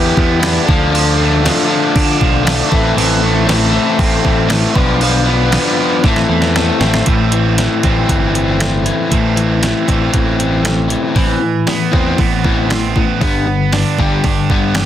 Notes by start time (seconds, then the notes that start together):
Already playing: E2 B3 D4 E4 G4 B4 E5 G5 D6
0.17 E2 B3, kick
0.40 E3 B3 E4 G4 B4, snare, crash
0.45 D4
0.66 D2 D3 F3 D4 F4 A4 D5 F5, kick
0.91 D3 D4 F4 A4, crash
0.95 F3
1.16 D4 F4 A4
1.21 A3
1.43 D3 F3 D4 F4 A4, snare, crash
1.67 F3 D4 F4 A4
1.96 D3 D4, kick, crash
2.21 B1 F3, kick
2.43 D3 A3 D4 F4 A4, snare, crash
2.69 A1 A2 E3 A3 C4 E4 A4 C5 E5 C6, kick
2.95 A1 A2 E3 A3 C4 E4 A4, crash
3.20 A3 C4 E4 A4
3.45 E3 A3 C4 E4 A4, crash
3.49 snare
3.72 E3 C4 E4 A4
3.99 A1 C4, kick, crash
4.24 A1 E3, kick
4.48 A2 A3 C4 E4 A4, snare, crash
4.64 snare
4.74 B1 F3 B3 D4 F4 B4 D5 F5 D6, kick
5.00 F3 B3 D4 F4 B4, crash
5.26 B3 D4 F4 B4
5.51 F3 B3 D4 F4 B4, snare, crash
5.77 F3 D4 F4 B4
6.03 A1 A2 E3 A3 C4 E4 A4 C5 E5 C6, kick, snare
6.08 A4
6.16 snare
6.29 E2 E3
6.42 snare
6.53 A2 A3 C4 E4 A4, snare
6.80 A1 C4 E4 A4, snare
6.94 snare
7.05 A1 A2 E3 A3 C4, kick, closed hi-hat
7.32 E3, closed hi-hat
7.58 E3, snare, closed hi-hat
7.83 A1 E3 A3 C4, kick, closed hi-hat
8.09 G1 E3, kick, closed hi-hat
8.34 C4, closed hi-hat
8.59 A3, snare, closed hi-hat
8.85 E3, closed hi-hat
9.10 A1 A2 E3 A3, kick, closed hi-hat
9.15 C4
9.36 E3, closed hi-hat
9.62 E3, snare, closed hi-hat
9.87 A1 A3 C4, kick, closed hi-hat
9.92 E3
10.13 A1 E3, kick, closed hi-hat
10.39 C4, closed hi-hat
10.63 A3, snare, closed hi-hat
10.89 E3, closed hi-hat
11.15 A1 A2 E3 C4, kick, open hi-hat
11.41 A2 E3
11.67 A2 E3 B3, snare, open hi-hat
11.92 E2 A2 E3 C4, kick
12.18 A1 A2 E3 B3, kick, open hi-hat
12.44 A2 E3 C4, kick
12.69 A2 E3 C4, snare, open hi-hat
12.96 A2 E3 B3, kick
13.21 G1 G2 D3 G3 B3, kick, open hi-hat
13.46 G2 D3
13.72 G2 D3 D4, snare, open hi-hat
13.99 G1 G2 D3 G3 G4, kick
14.24 G1 G2 D3 D4, kick, open hi-hat
14.50 G2 D3 G3 B3, kick
14.75 G2 D3 G4, snare, open hi-hat